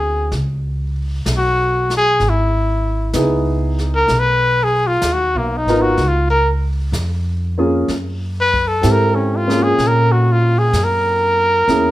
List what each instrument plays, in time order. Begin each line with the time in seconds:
Already playing: upright bass D2, trumpet G#4
0.32 upright bass C#2, brush sweep, snare
1.25 upright bass B1, snare, hi-hat pedal
1.37 trumpet F#4
1.90 snare
1.97 trumpet G#4
2.20 upright bass G#1, brush sweep, snare
2.29 trumpet E4
3.13 upright bass C#2, grand piano B3 D#4 E4 G#4, snare, hi-hat pedal
3.79 snare
3.95 trumpet A#4
4.08 upright bass B1, brush sweep, snare
4.19 trumpet B4
4.63 trumpet G#4
4.87 trumpet F4
5.02 upright bass D#2, snare, hi-hat pedal
5.13 trumpet F#4
5.35 upright bass B1, trumpet A#3
5.57 trumpet D#4
5.66 upright bass G#1, grand piano B3 D#4 F4 A#4, snare
5.82 trumpet F#4
5.97 upright bass C#2, brush sweep, snare
6.08 trumpet F4
6.30 trumpet A#4
6.92 upright bass F2, snare, hi-hat pedal
7.58 grand piano A#3 C#4 F4 G#4
7.88 upright bass F#2, brush sweep, snare
8.41 trumpet B4
8.53 kick
8.68 trumpet A4
8.82 upright bass G#2, grand piano C4 E4 G4 A4, snare, hi-hat pedal
8.91 trumpet A#4
9.15 trumpet C#4
9.37 trumpet F4
9.48 grand piano A#3 C#4 F4 G#4, snare
9.63 trumpet G#4
9.78 upright bass A#2, brush sweep, snare
9.87 trumpet A#4
10.12 trumpet F#4
10.32 trumpet F4
10.58 trumpet G#4
10.73 upright bass F#2, snare, hi-hat pedal
10.84 trumpet A#4
11.68 upright bass E2, grand piano A#3 C#4 E4 G#4, brush sweep, snare